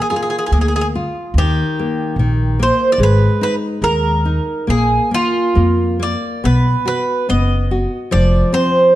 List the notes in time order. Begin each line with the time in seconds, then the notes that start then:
Already playing: A#3
0.02 G#4
0.10 F4 G#4
0.16 G#4
0.23 G#4
0.30 G#4
0.39 G#4
0.46 G#4
0.51 D2 A#3 G#4
0.61 G#4
0.68 G#4
0.76 G#4
0.81 G#4
0.95 F4
1.34 D#2
1.38 D#3 G4
1.79 A#3
2.16 A#1 D#3
2.59 A#3 C5
2.92 D5
2.98 G#1 G#3
3.03 B4
3.41 D#4 B4
3.82 D#2 G#3 A#4
4.25 D#4
4.67 A#1 A#3 G#4
5.11 A#3 F4
5.55 F2 A#3
6.00 A#3 D5
6.44 B1 B3 B4
6.85 F#4 B4
7.29 F#1 B3 D#5
7.71 F#4
8.11 F1 F3 D5
8.53 C4 C5